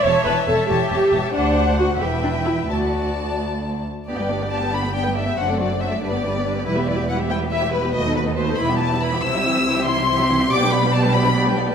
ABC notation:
X:1
M:6/8
L:1/16
Q:3/8=93
K:G
V:1 name="Violin section"
e12 | f6 B6 | d8- d z3 | d4 a2 b2 g2 e2 |
f2 d2 e2 d6 | B2 d2 f2 g2 e2 B2 | ^d2 B2 c2 b2 a2 b2 | e'6 c'6 |
d'2 b2 a2 b2 z4 |]
V:2 name="Violin section"
[^ca]2 [ca]2 [ca]2 [ca]2 [ca]2 [ca]2 | [cf]6 [eg]6 | a8- a2 z2 | [Gd] [Bg] [Gd] [Bg] [Gd] [Bg] [Gd] [Bg] [Gd] [Bg] [Gd] [Bg] |
[Fc] [Ad] [Fc] [Ad] [Fc] [Ad] B [Gd] B [Gd] B [Gd] | [EB] [Ge] [EB] [Ge] [EB] [Ge] [EB] [Ge] [EB] [Ge] [EB] [Ge] | B [A^d] B [Ad] B [Ad] [EB] [Ge] [EB] [Ge] [EB] [Ge] | [Ec] [Ge] [Ec] [Ge] [Ec] [Ge] [Ec] [Ge] [Ec] [Ge] [Ec] [Ge] |
d [Bg] d [Bg] d [Bg] d [Bg] d [Bg] d [Bg] |]
V:3 name="Viola section"
^c2 B2 A2 G6 | D4 F2 G2 D2 E2 | F6 z6 | [B,D] [G,B,] [B,D] [G,B,] [B,D] [G,B,] [B,D] [G,B,] [B,D] [G,B,] [B,D] [G,B,] |
[F,D] [A,C] [F,D] [A,C] [F,D] [A,C] [G,D] B, [G,D] B, [G,D] B, | [G,E] [B,G] [G,E] [B,G] [G,E] [B,G] [G,E] [B,G] [G,E] [B,G] [G,E] [B,G] | [A,F] [B,^D] [A,F] [B,D] [A,F] [B,D] [E,E] [G,B,] [E,E] [G,B,] [E,E] [G,B,] | [E,E] [G,C] [E,E] [G,C] [E,E] [G,C] [E,E] [G,C] [E,E] [G,C] [E,E] [G,C] |
[B,G] [G,D] [B,G] [G,D] [B,G] [G,D] [B,G] [G,D] [B,G] [G,D] [B,G] [G,D] |]
V:4 name="Cello section" clef=bass
E,,2 E,,2 E,,2 E,,2 E,,2 E,,2 | D,,6 E,,6 | D,,8- D,,2 z2 | G,,12 |
F,,6 G,,6 | E,,12 | ^D,,6 E,,6 | C,12 |
B,,12 |]
V:5 name="Double bass section" clef=bass
E,,,2 E,,,2 E,,,2 E,,,2 E,,,2 E,,,2 | D,,6 E,,,6 | D,,8- D,,2 z2 | G,,,12 |
F,,,6 G,,,6 | E,,,12 | ^D,,6 E,,,6 | C,,12 |
B,,,12 |]